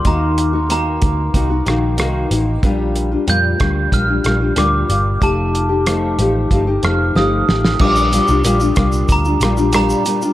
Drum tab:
CC |----------------|----------------|----------------|x---------------|
HH |x-x-x-x-x-x-x-x-|x-x-x-x-x-x-x-x-|x-x-x-x-x-x-----|--x-x-x-x-x-x-x-|
SH |----------------|----------------|----------------|-xxxxxxxxxxxxxxx|
SD |----------r-r---|------r---r-r---|----r-----r-o-oo|------r---r-r---|
BD |o-----o-o-------|o-----o-o-------|o-------o-------|o-----o-o-------|